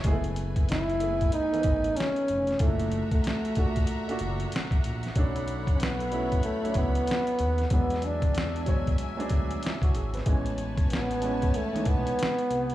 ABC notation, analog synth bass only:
X:1
M:4/4
L:1/16
Q:"Swing 16ths" 1/4=94
K:F#m
V:1 name="Analog synth bass" clef=bass
F,,,8 z2 G,,,2 z2 ^E,,,2 | F,,,3 F,,, z6 F,,,2 z E,,, ^A,,,2 | B,,,8 z2 C,,2 z2 ^D,,2 | E,,8 z2 D,,2 z C,, G,,,2 |
A,,,8 z2 B,,,2 z2 ^B,,,2 |]